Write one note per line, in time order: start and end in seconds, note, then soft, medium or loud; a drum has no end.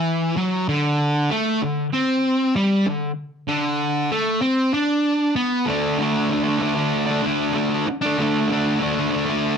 0.00 0.35 E3 loud
0.37 0.67 F#3 loud
0.68 1.30 D3 loud
1.30 1.61 A3 loud
1.62 1.87 D3 medium
1.94 2.55 C4 loud
2.56 2.86 G3 loud
2.86 3.11 D3 medium
3.48 4.10 D3 loud
4.12 4.42 A3 loud
4.42 4.73 C4 loud
4.74 5.35 D4 loud
5.36 5.66 B3 loud
5.66 5.98 D3 medium
5.66 6.00 A3 medium
5.70 6.02 D4 loud
5.98 6.29 D3 medium
5.98 6.31 A3 medium
6.02 6.33 D4 medium
6.29 6.59 D3 medium
6.29 6.48 A3 medium
6.33 6.44 D4 loud
6.44 6.63 D4 medium
6.49 6.61 A3 medium
6.59 7.22 D3 medium
6.59 6.79 A3 medium
6.63 6.75 D4 medium
6.75 7.06 D4 medium
6.80 7.10 A3 medium
7.07 7.24 A3 medium
7.07 7.26 D4 medium
7.22 7.53 D3 medium
7.22 7.55 A3 medium
7.27 7.57 D4 medium
7.53 7.86 D3 medium
7.53 7.74 A3 loud
7.57 7.69 D4 loud
7.69 7.88 D4 medium
7.74 7.87 A3 medium
7.87 muted distorted electric guitar stroke soft
8.01 8.21 D4 medium
8.05 8.19 A3 medium
8.17 8.48 D3 medium
8.17 8.50 A3 medium
8.22 8.52 D4 loud
8.48 8.79 D3 medium
8.48 8.81 A3 medium
8.53 8.83 D4 medium
8.80 9.10 D3 medium
8.80 8.99 A3 medium
8.80 8.95 D4 medium
8.96 9.15 D4 medium
9.00 9.12 A3 medium
9.11 9.58 D3 medium
9.11 9.30 A3 medium
9.15 9.25 D4 medium
9.26 9.56 D4 medium
9.30 9.58 A3 medium